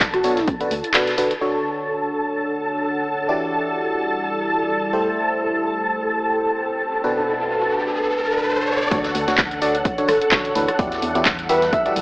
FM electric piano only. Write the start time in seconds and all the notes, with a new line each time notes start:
0.24 B2 D4 F#4 A4 C#5
0.61 B2 D4 F#4 A4 B4
0.95 B2 D4 F#4 A4 B4
1.18 D3 D4 F#4 A4 B4
1.41 D3 D4 F#4 A4 C#5
3.29 E3 E4 F#4 G4 D5
4.93 A3 E4 G4 A4 C5
7.04 B2 D4 F#4 A4 B4
8.91 D3 D4 F#4 A4 C#5
9.28 D3 D4 F#4 A4 C#5
9.62 D3 D4 F#4 A4 D5
9.98 D3 D4 F#4 A4 C#5
10.32 D3 D4 F#4 A4 C#5
10.56 E3 D4 F#4 A4 B4
10.79 E3 E4 F#4 G4 D5
11.15 E3 E4 F#4 G4 D5
11.49 E3 E4 F#4 G4 E5
11.86 E3 E4 F#4 G4 D5